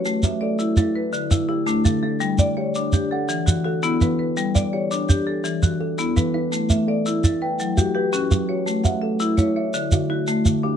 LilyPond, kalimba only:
<<
  \new Staff \with { instrumentName = "Kalimba" } { \time 12/8 \key a \mixolydian \tempo 4. = 112 fis'8 e''8 a'4. r4. g'4. d'8~ | d'8 d''8 g'4. fis''4. a'4. r8 | r8 d''8 g'4. r4. a'4. e'8~ | e'8 e''8 a'4. g''4. b'4. fis'8~ |
fis'8 e''8 a'4. e''4 fis'8 e'4. g'8 | }
  \new Staff \with { instrumentName = "Kalimba" } { \clef bass \time 12/8 \key a \mixolydian r8 a4 r8 e'4 r8 d4 r8 d4 | r8 g4 r8 d'4 r8 e4 r8 e4 | r8 g4 r8 d'4 r8 e4 r8 e4 | r8 a4 r8 e'4 r8 fis'4 r8 fis4 |
r8 a4 r8 e'4 r8 d4 r8 d4 | }
>>